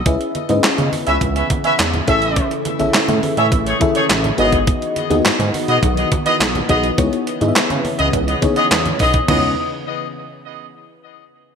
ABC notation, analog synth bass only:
X:1
M:4/4
L:1/16
Q:1/4=104
K:C#m
V:1 name="Analog synth bass" clef=bass
C,, z2 G,, C, C, z C,, C,,2 z2 E,,2 A,,,2- | A,,, z2 A,,, A,, A,, z A,, A,,,2 z2 A,,,2 G,,,2- | G,,, z2 D,, G,, G,, z B,, B,,,2 z2 B,,,2 B,,,2 | C,, z2 G,, C, C, z C,, C,,2 z2 E,,2 B,,,2 |
C,,2 z12 z2 |]